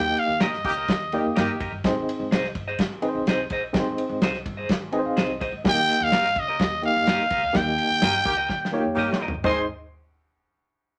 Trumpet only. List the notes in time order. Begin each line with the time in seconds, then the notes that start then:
Already playing: G5
0.19 F5
0.43 D#5
5.69 G5
6.04 F5
6.39 D#5
6.85 F5
7.56 G5
9.45 C6